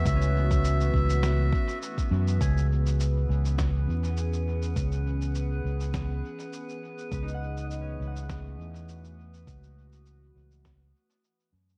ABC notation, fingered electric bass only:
X:1
M:4/4
L:1/8
Q:"Swing 16ths" 1/4=102
K:C#m
V:1 name="Fingered electric bass" clef=bass
C,,3 C,,2 z2 F,, | C,,3 C,,2 E,,3 | C,,3 C,,2 z3 | C,,3 C,,2 E,,3 |
C,,3 C,,2 z2 F,, |]